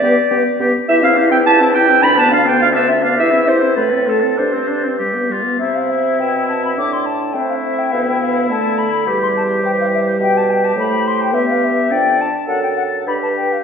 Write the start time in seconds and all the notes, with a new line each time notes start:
Already playing: D5
0.02 G2 B3 G4
0.30 G2 B3 G4
0.60 G2 B3 G4
0.88 E2 E4 G4 E5
1.03 C4 E4 F5
1.17 E4 G4
1.30 C4 E4 G5
1.46 E4 G4 A5
1.61 C4 E4
1.74 E4 G4 G5
1.89 C4 E4
2.02 D2 D4 F4 B5
2.16 B3 D4 A5
2.30 D4 F4 F5
2.46 B3 D4 G5
2.57 D4 F4 F5
2.62 F5
2.73 B3 D4 E5
2.88 D4 F4
3.02 B3 D4 F5
3.16 E2 E4 G4 E5
3.31 C4 E4
3.46 E4 G4 C5
3.61 C4 E4
3.75 A2 A3 F4 B4
3.90 C4 A4
4.06 A3 F4 A4
4.21 C4 A4
4.36 G2 D4 C5
4.53 C4
4.67 D4
4.84 C4
4.99 G3 G4
5.14 B3
5.30 G3 F4
5.44 B3
5.59 C3 C4 E4 C5 E5
5.75 F5
5.91 E5
6.19 B2 E5 G5
6.49 A5
6.65 B5
6.77 A2 D4 D5 D6
6.93 C6
7.06 A5
7.33 A3 C4 E4 C5 G5
7.49 F5
7.65 E5
7.79 G5
7.92 D2 B3 B4 F5
8.08 G5
8.22 F5
8.49 D3 A3 A4 A5
8.78 B5
9.06 E2 G3 G4
9.22 C6
9.37 A5
9.62 E3 C5 G5
9.80 F5
9.94 E5
10.18 B2 G4 B4 G5
10.37 A5
10.50 G5
10.65 A5
10.75 A2 A3 C5 B5
11.07 C6
11.22 G5
11.33 G2 B3 G4 B4 E5
11.50 F5
11.64 E5
11.91 F2 D4 A4 D5 G5
12.21 A5
12.47 F#2 A4 F#5
12.63 G5
12.77 F#5
13.07 G2 D4 G4 B4 B5
13.23 A5
13.37 G5
13.52 F5